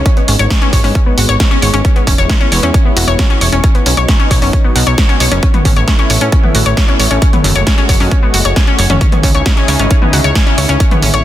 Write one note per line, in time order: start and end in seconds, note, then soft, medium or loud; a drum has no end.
0.00 1.81 D#4 medium
0.06 3.60 G#3 medium
0.06 1.83 B3 medium
0.06 0.09 C#4 medium
0.06 kick loud
0.06 closed hi-hat medium
0.17 0.23 B3 medium
0.17 closed hi-hat soft
0.28 0.36 G#1 medium
0.28 0.34 C#4 medium
0.28 open hi-hat loud
0.39 0.47 G#1 medium
0.39 0.45 C#5 loud
0.39 closed hi-hat soft
0.50 0.54 C#4 loud
0.50 kick loud
0.50 snare loud
0.50 closed hi-hat medium
0.62 0.71 C#4 loud
0.62 closed hi-hat soft
0.73 0.81 G#1 medium
0.73 0.79 C#5 medium
0.73 kick medium
0.73 open hi-hat loud
0.84 0.92 G#2 medium
0.84 0.93 C#4 loud
0.84 open hi-hat medium
0.95 1.01 C#4 medium
0.95 kick loud
0.95 closed hi-hat medium
1.06 1.12 B3 medium
1.18 1.26 G#1 medium
1.18 1.27 F#4 medium
1.18 open hi-hat loud
1.29 1.37 G#1 medium
1.29 1.35 C#5 loud
1.29 closed hi-hat medium
1.40 1.43 C#4 loud
1.40 kick loud
1.40 snare loud
1.40 closed hi-hat medium
1.51 1.60 C#4 loud
1.51 closed hi-hat soft
1.62 1.70 G#1 loud
1.62 1.68 C#5 medium
1.62 open hi-hat loud
1.74 1.81 G#1 medium
1.74 1.82 C#4 loud
1.74 closed hi-hat soft
1.84 3.62 B3 medium
1.84 1.88 C#4 medium
1.84 3.62 E4 medium
1.84 kick loud
1.84 closed hi-hat medium
1.96 2.02 B3 medium
1.96 closed hi-hat soft
2.07 2.15 E1 medium
2.07 2.13 C#4 medium
2.07 kick medium
2.07 open hi-hat loud
2.18 2.26 E1 medium
2.18 2.24 C#5 loud
2.18 closed hi-hat medium
2.29 2.33 C#4 loud
2.29 kick loud
2.29 snare loud
2.29 closed hi-hat medium
2.41 2.50 C#4 loud
2.41 closed hi-hat soft
2.52 2.60 E1 medium
2.52 2.58 C#5 medium
2.52 open hi-hat loud
2.63 2.71 E2 medium
2.63 2.72 C#4 loud
2.63 closed hi-hat medium
2.74 2.80 C#4 medium
2.74 kick loud
2.74 closed hi-hat medium
2.85 2.91 B3 medium
2.97 3.05 E1 loud
2.97 3.06 F#4 medium
2.97 open hi-hat loud
3.08 3.16 E1 medium
3.08 3.14 C#5 loud
3.08 closed hi-hat soft
3.19 3.23 C#4 loud
3.19 kick loud
3.19 snare loud
3.19 closed hi-hat medium
3.30 3.39 C#4 loud
3.30 closed hi-hat soft
3.41 3.49 E1 medium
3.41 3.47 C#5 medium
3.41 open hi-hat loud
3.52 3.60 E1 medium
3.52 3.62 C#4 loud
3.52 closed hi-hat medium
3.64 5.41 F#3 medium
3.64 7.18 B3 medium
3.64 3.67 C#4 medium
3.64 5.41 D#4 medium
3.64 kick loud
3.64 closed hi-hat medium
3.75 3.81 B3 medium
3.75 closed hi-hat soft
3.86 3.94 B1 medium
3.86 3.92 C#4 medium
3.86 open hi-hat loud
3.97 4.05 B1 medium
3.97 4.03 C#5 loud
3.97 closed hi-hat soft
4.08 4.12 C#4 loud
4.08 kick loud
4.08 snare loud
4.08 closed hi-hat medium
4.20 4.29 C#4 loud
4.20 closed hi-hat soft
4.31 4.39 B1 medium
4.31 4.37 C#5 medium
4.31 kick medium
4.31 open hi-hat loud
4.42 4.50 F#1 medium
4.42 4.51 C#4 loud
4.42 open hi-hat medium
4.53 4.59 C#4 medium
4.53 kick loud
4.53 closed hi-hat medium
4.64 4.70 B3 medium
4.76 4.84 B1 medium
4.76 4.85 F#4 medium
4.76 open hi-hat loud
4.87 4.95 B1 medium
4.87 4.93 C#5 loud
4.87 closed hi-hat medium
4.98 5.02 C#4 loud
4.98 kick loud
4.98 snare loud
4.98 closed hi-hat medium
5.09 5.18 C#4 loud
5.09 closed hi-hat soft
5.20 5.28 B1 medium
5.20 5.26 C#5 medium
5.20 open hi-hat loud
5.31 5.40 F#1 medium
5.31 5.41 C#4 loud
5.31 closed hi-hat soft
5.43 8.97 A3 medium
5.43 5.46 C#4 medium
5.43 7.20 E4 medium
5.43 kick loud
5.43 closed hi-hat medium
5.54 5.60 B3 medium
5.54 closed hi-hat soft
5.54 mid tom medium
5.65 5.73 A1 medium
5.65 5.71 C#4 medium
5.65 kick medium
5.65 open hi-hat loud
5.76 5.84 A1 medium
5.76 5.82 C#5 medium
5.76 closed hi-hat soft
5.88 5.91 C#4 loud
5.88 kick loud
5.88 snare loud
5.88 closed hi-hat medium
5.99 6.08 C#4 loud
5.99 closed hi-hat soft
6.10 6.18 A1 medium
6.10 6.16 C#5 medium
6.10 open hi-hat loud
6.21 6.29 A2 medium
6.21 6.30 C#4 loud
6.21 closed hi-hat soft
6.32 6.38 C#4 medium
6.32 kick loud
6.32 closed hi-hat medium
6.43 6.50 B3 medium
6.43 mid tom medium
6.55 6.63 A1 medium
6.55 6.64 F#4 medium
6.55 open hi-hat loud
6.66 6.74 A1 medium
6.66 6.72 C#5 loud
6.66 closed hi-hat soft
6.77 6.81 C#4 loud
6.77 kick loud
6.77 snare loud
6.77 closed hi-hat medium
6.88 6.97 C#4 loud
6.88 closed hi-hat soft
7.00 7.08 A1 medium
7.00 7.06 C#5 medium
7.00 open hi-hat loud
7.11 7.19 A1 medium
7.11 7.20 C#4 loud
7.11 closed hi-hat medium
7.22 8.99 G#3 medium
7.22 7.26 C#4 medium
7.22 8.99 F#4 medium
7.22 kick loud
7.22 closed hi-hat medium
7.33 7.39 B3 medium
7.33 closed hi-hat soft
7.33 mid tom medium
7.44 7.52 F#1 medium
7.44 7.50 C#4 medium
7.44 open hi-hat loud
7.55 7.63 F#1 medium
7.55 7.62 C#5 medium
7.55 closed hi-hat soft
7.67 7.70 C#4 loud
7.67 kick loud
7.67 snare loud
7.67 closed hi-hat medium
7.78 7.87 C#4 loud
7.78 closed hi-hat soft
7.89 7.97 F#1 loud
7.89 7.95 C#5 medium
7.89 kick medium
7.89 open hi-hat loud
8.00 8.08 F#2 medium
8.00 8.09 C#4 loud
8.00 open hi-hat medium
8.11 8.18 C#4 medium
8.11 kick loud
8.11 closed hi-hat medium
8.23 8.29 B3 medium
8.34 8.42 F#1 medium
8.34 8.43 F#4 medium
8.34 open hi-hat loud
8.45 8.53 F#1 medium
8.45 8.51 C#5 medium
8.45 closed hi-hat medium
8.56 8.60 C#4 loud
8.56 kick loud
8.56 snare loud
8.56 closed hi-hat medium
8.67 8.77 C#4 loud
8.67 closed hi-hat soft
8.79 8.87 F#1 loud
8.79 8.85 C#5 medium
8.79 open hi-hat loud
8.90 8.98 F#1 medium
8.90 8.99 C#4 loud
8.90 closed hi-hat medium
8.90 mid tom medium
9.01 10.78 C#3 medium
9.01 9.05 C#4 medium
9.01 10.78 C#4 medium
9.01 10.78 D#4 medium
9.01 11.24 E4 medium
9.01 10.78 G#4 medium
9.01 kick loud
9.01 closed hi-hat medium
9.12 9.18 B3 medium
9.12 closed hi-hat soft
9.12 mid tom medium
9.23 9.31 C#2 medium
9.23 9.30 C#4 medium
9.23 kick medium
9.23 open hi-hat medium
9.35 9.43 C#2 medium
9.35 9.41 C#5 loud
9.35 closed hi-hat medium
9.46 9.50 C#4 loud
9.46 kick loud
9.46 snare loud
9.46 closed hi-hat medium
9.57 9.66 C#4 loud
9.57 closed hi-hat soft
9.68 9.76 C#2 medium
9.68 9.74 C#5 medium
9.68 open hi-hat loud
9.79 9.87 G#1 medium
9.79 9.89 C#4 loud
9.79 closed hi-hat medium
9.91 9.97 C#4 medium
9.91 kick loud
9.91 closed hi-hat medium
10.02 10.08 B3 medium
10.02 mid tom medium
10.13 10.21 C#2 loud
10.13 10.22 F#4 medium
10.13 open hi-hat loud
10.24 10.32 C#2 medium
10.24 10.30 C#5 loud
10.24 closed hi-hat medium
10.35 10.39 C#4 loud
10.35 kick loud
10.35 snare loud
10.35 closed hi-hat medium
10.47 10.56 C#4 loud
10.47 closed hi-hat soft
10.58 10.66 C#2 loud
10.58 10.64 C#5 medium
10.58 open hi-hat loud
10.69 10.77 C#2 medium
10.69 10.78 C#4 loud
10.69 closed hi-hat medium
10.80 11.24 A3 medium
10.80 11.24 B3 medium
10.80 10.84 C#4 medium
10.80 kick loud
10.80 closed hi-hat medium
10.91 10.97 B3 medium
10.91 closed hi-hat soft
10.91 mid tom medium
11.02 11.10 A1 medium
11.02 11.09 C#4 medium
11.02 open hi-hat loud
11.14 11.22 A1 medium
11.14 11.20 C#5 loud
11.14 closed hi-hat medium